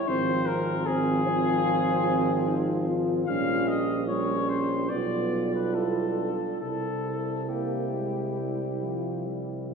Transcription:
0.07 G#1 F3 C4 C5
0.46 A#4
0.86 F3 C4 G#4
1.27 F4
2.48 D#4
2.88 F4
3.26 A#1 G3 C#4 F5
3.68 D#5
4.07 G3 C#4 C#5
4.48 C5
4.89 B1 G3 B3 F4 D5
5.54 B4
5.74 E4 A4
6.17 D4
6.60 C2 G3 E4 A4
7.48 A#3 E4 G4
7.93 G#3
8.39 G3
8.83 F3
9.26 G3

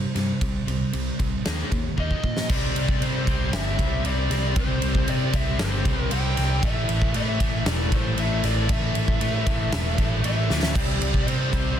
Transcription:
Already playing: C3 G3 C5
0.14 G2 C3 G3, snare, ride
0.41 C2 C3 G3, kick, ride
0.67 C2 C3 G3, ride
0.93 C2 C3 G3, ride
1.19 C2 C3 G3, kick, ride
1.45 D#2 D#3 A#3 D#4, snare, ride
1.71 D#2 D#3 A#3, kick, ride
1.97 D#2 D#3 A#3 D#4 D#5, kick
2.11 kick
2.23 A#2 D#3 A#3, kick
2.37 snare
2.49 C2 C3 G3 C4 G4 D5, kick, crash
2.75 C2, ride
2.89 kick
3.01 C3 G3 C4 C5, ride
3.27 C2 C3 G3 C4, kick, ride
3.52 G1 C3 G3 C4 E5, snare, ride
3.79 C2, kick, ride
4.04 C2 C3 G3 C4 D5, ride
4.30 C2 C3 G3 C4, snare, ride
4.56 C2 C3 G3 C4 C5, kick, ride
4.82 C2, ride
4.95 kick
5.07 C3 G3 C4 D5, ride
5.33 C2 C3 G3 C4 E5, kick, ride
5.59 G1 C3 G3 C4 C5, snare, ride
5.85 C2, kick, ride
6.03 A#4
6.11 C2 C3 G3 C4 G5, ride
6.37 C2 C3 G3 C4, snare, ride
6.62 A2 E3 A3 E4 A4 E5, kick, ride
6.89 A1, ride
7.02 kick
7.14 A2 E3 A3 E5, ride
7.39 A1 A2 E3 A3, kick, ride
7.66 E1 A2 E3 A3 D5, snare, ride
7.92 A1 C5, kick, ride
8.17 A1 A2 E3 A3 E5, ride
8.43 A1 A2 E3 A3 D5, snare, ride
8.69 A1 A2 E3 A3 D4 E5, kick, ride
8.95 A1, ride
9.08 kick
9.21 A2 E3 A3, ride
9.46 A1 A2 E3 A3, kick, ride
9.71 E1 A2 E3 A3, snare, ride
9.98 A1, kick, ride
10.23 A1 A2 E3 A3 E5, ride
10.49 D2 A2 E3 A3, snare
10.63 snare
10.75 C2 C3 G3 C4 G4 D5, kick, crash
11.01 C2, ride
11.14 kick
11.25 C3 G3 C4 C5, ride
11.51 C2 C3 G3 C4, kick, ride
11.76 C3

